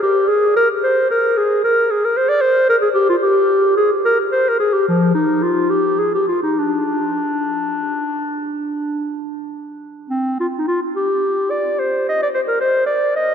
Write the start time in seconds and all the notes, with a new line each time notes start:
0.03 G4
0.28 G#4
0.57 A#4
0.83 C5
1.11 A#4
1.37 G#4
1.64 A#4
1.90 G#4
2.04 A#4
2.17 C5
2.29 D5
2.41 C5
2.69 A#4
2.82 G#4
2.94 G4
3.10 F4
3.22 G4
3.77 G#4
4.05 A#4
4.32 C5
4.49 A#4
4.60 G#4
4.74 G4
4.89 F3
5.15 D#4
5.43 F4
5.70 G4
5.99 G#4
6.14 G4
6.28 F4
6.43 D#4
6.59 D4
10.10 C4
10.40 F4
10.58 D#4
10.68 F4
10.96 G4
11.51 D5
11.79 C5
12.09 D#5
12.23 D5
12.34 C5
12.48 A#4
12.60 C5
12.86 D5
13.16 D#5